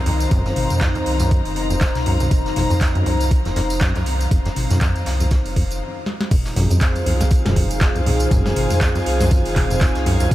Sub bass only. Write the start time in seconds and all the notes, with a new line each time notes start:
Already playing: C2
0.31 F1
0.56 G#1
0.71 F2
1.06 C2
1.45 F1
1.95 C2
2.31 F1
2.56 G#1
2.71 F2
3.06 C2
3.45 F1
3.96 C2
4.31 F1
4.56 G#1
4.70 F2
5.06 C2
5.45 F1
6.31 F1
6.56 G#1
6.71 F2
7.06 C2
7.45 F1
7.96 C2
8.31 F1
8.56 G#1
8.70 F2
9.06 C2
9.46 F1
9.96 C2
10.31 F1